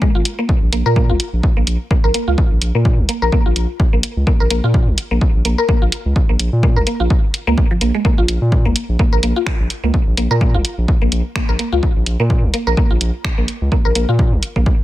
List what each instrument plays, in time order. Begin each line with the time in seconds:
0.02 synth arpeggio sound G#3, kick
0.15 sub bass G#1, synth arpeggio sound F4
0.25 closed hi-hat
0.39 synth arpeggio sound A#3
0.49 kick
0.62 sub bass A#1
0.72 sub bass A#1, synth arpeggio sound A#3, closed hi-hat
0.86 sub bass A#2, synth arpeggio sound A#4
0.96 synth arpeggio sound A#3, kick
1.10 sub bass A#1, synth arpeggio sound F4
1.20 closed hi-hat
1.33 sub bass A#1
1.43 kick
1.57 sub bass A#1, synth arpeggio sound A#3
1.67 sub bass A#1, closed hi-hat
1.91 synth arpeggio sound A#3, kick
2.04 sub bass A#1, synth arpeggio sound A#4
2.14 synth arpeggio sound A#3, closed hi-hat
2.28 sub bass C#2, synth arpeggio sound F4
2.38 kick
2.51 sub bass A#1
2.62 sub bass A#1, closed hi-hat
2.75 sub bass A#2, synth arpeggio sound A#3
2.85 kick
2.99 sub bass A#1
3.09 synth arpeggio sound A#3, closed hi-hat
3.22 sub bass A#1, synth arpeggio sound A#4
3.32 synth arpeggio sound A#3, kick
3.46 sub bass A#1, synth arpeggio sound F4
3.56 sub bass A#1, closed hi-hat
3.80 kick
3.93 sub bass A#1, synth arpeggio sound A#3
4.03 closed hi-hat
4.17 sub bass C#2
4.27 synth arpeggio sound A#3, kick
4.40 sub bass A#1, synth arpeggio sound A#4
4.50 sub bass A#1, synth arpeggio sound A#3, closed hi-hat
4.64 sub bass A#2, synth arpeggio sound F4
4.74 kick
4.88 sub bass A#1
4.98 closed hi-hat
5.11 sub bass A#1, synth arpeggio sound A#3
5.21 kick
5.35 sub bass A#1
5.45 sub bass A#1, synth arpeggio sound A#3, closed hi-hat
5.58 synth arpeggio sound A#4
5.69 synth arpeggio sound A#3, kick
5.82 sub bass A#1, synth arpeggio sound F4
5.92 closed hi-hat
6.06 sub bass C#2
6.16 kick
6.29 sub bass A#1, synth arpeggio sound A#3
6.39 sub bass A#1, closed hi-hat
6.53 sub bass A#2
6.63 synth arpeggio sound A#3, kick
6.76 sub bass A#1, synth arpeggio sound A#4
6.87 synth arpeggio sound A#3, closed hi-hat
7.00 sub bass A#1, synth arpeggio sound F4
7.10 kick
7.34 closed hi-hat
7.47 sub bass C#2, synth arpeggio sound A#3
7.58 kick
7.71 synth arpeggio sound F3
7.81 sub bass A#1, synth arpeggio sound A#3, closed hi-hat
7.95 synth arpeggio sound G#3
8.05 synth arpeggio sound A#3, kick
8.18 sub bass A#1, synth arpeggio sound F4
8.28 sub bass A#1, closed hi-hat
8.42 sub bass A#2
8.52 kick
8.65 sub bass A#1, synth arpeggio sound A#3
8.76 closed hi-hat
8.89 sub bass A#1
8.99 synth arpeggio sound A#3, kick
9.13 sub bass A#1, synth arpeggio sound A#4
9.23 sub bass A#1, synth arpeggio sound A#3, closed hi-hat
9.36 synth arpeggio sound F4
9.47 finger snap, kick
9.60 sub bass A#1
9.70 closed hi-hat
9.83 sub bass C#2, synth arpeggio sound A#3
9.94 kick
10.07 sub bass A#1
10.17 sub bass A#1, synth arpeggio sound A#3, closed hi-hat
10.31 sub bass A#2, synth arpeggio sound A#4
10.41 synth arpeggio sound A#3, kick
10.54 sub bass A#1, synth arpeggio sound F4
10.65 closed hi-hat
10.78 sub bass A#1
10.88 kick
11.02 sub bass A#1, synth arpeggio sound A#3
11.12 sub bass A#1, closed hi-hat
11.36 synth arpeggio sound A#3, finger snap, kick
11.49 sub bass A#1, synth arpeggio sound A#4
11.59 synth arpeggio sound A#3, closed hi-hat
11.72 sub bass C#2, synth arpeggio sound F4
11.83 kick
11.96 sub bass A#1
12.06 sub bass A#1, closed hi-hat
12.20 sub bass A#2, synth arpeggio sound A#3
12.30 kick
12.43 sub bass A#1
12.54 synth arpeggio sound A#3, closed hi-hat
12.67 sub bass A#1, synth arpeggio sound A#4
12.77 synth arpeggio sound A#3, kick
12.91 sub bass A#1, synth arpeggio sound F4
13.01 sub bass A#1, closed hi-hat
13.25 finger snap, kick
13.38 sub bass A#1, synth arpeggio sound A#3
13.48 closed hi-hat
13.62 sub bass C#2
13.72 synth arpeggio sound A#3, kick
13.85 sub bass A#1, synth arpeggio sound A#4
13.95 sub bass A#1, synth arpeggio sound A#3, closed hi-hat
14.09 sub bass A#2, synth arpeggio sound F4
14.19 kick
14.32 sub bass A#1
14.43 closed hi-hat
14.56 sub bass A#1, synth arpeggio sound A#3, kick
14.66 kick